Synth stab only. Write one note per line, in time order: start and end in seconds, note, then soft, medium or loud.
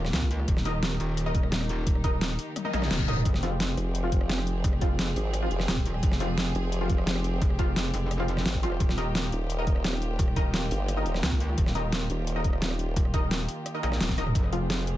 0.65 0.71 D#4 medium
0.65 0.71 A#4 medium
0.65 0.71 D#5 loud
1.26 1.32 D#4 medium
1.26 1.32 A#4 medium
1.26 1.32 D#5 loud
2.04 2.10 D#4 medium
2.04 2.10 A#4 medium
2.04 2.10 D#5 loud
2.65 2.71 D#4 medium
2.65 2.71 A#4 medium
2.65 2.71 D#5 loud
2.73 2.79 D#4 medium
2.73 2.79 A#4 medium
2.73 2.79 D#5 loud
3.08 3.14 D#4 loud
3.08 3.14 A#4 medium
3.08 3.14 D#5 loud
3.43 3.49 F3 medium
3.43 3.49 C4 medium
3.43 3.49 F4 loud
4.03 4.09 F3 medium
4.03 4.09 C4 medium
4.03 4.09 F4 loud
4.82 4.88 F3 medium
4.82 4.88 C4 medium
4.82 4.88 F4 loud
5.42 5.48 F3 medium
5.42 5.48 C4 medium
5.42 5.48 F4 loud
6.20 6.26 F3 medium
6.20 6.26 C4 medium
6.20 6.26 F4 loud
6.81 6.87 F3 medium
6.81 6.87 C4 medium
6.81 6.87 F4 loud
7.59 7.65 F3 medium
7.59 7.65 C4 medium
7.59 7.65 F4 loud
8.20 8.26 F3 medium
8.20 8.26 C4 medium
8.20 8.26 F4 loud
8.63 8.69 F3 loud
8.63 8.69 C4 medium
8.63 8.69 F4 loud
8.98 9.04 D#4 medium
8.98 9.04 A#4 medium
8.98 9.04 D#5 loud
9.58 9.64 D#4 medium
9.58 9.64 A#4 medium
9.58 9.64 D#5 loud
10.36 10.42 D#4 medium
10.36 10.42 A#4 medium
10.36 10.42 D#5 loud
10.97 11.03 D#4 medium
10.97 11.03 A#4 medium
10.97 11.03 D#5 loud
11.75 11.81 D#4 medium
11.75 11.81 A#4 medium
11.75 11.81 D#5 loud
12.36 12.42 D#4 medium
12.36 12.42 A#4 medium
12.36 12.42 D#5 loud
13.14 13.20 D#4 medium
13.14 13.20 A#4 medium
13.14 13.20 D#5 loud
13.75 13.81 D#4 medium
13.75 13.81 A#4 medium
13.75 13.81 D#5 loud
13.83 13.89 D#4 medium
13.83 13.89 A#4 medium
13.83 13.89 D#5 loud
14.18 14.24 D#4 loud
14.18 14.24 A#4 medium
14.18 14.24 D#5 loud
14.53 14.59 F3 medium
14.53 14.59 C4 medium
14.53 14.59 F4 loud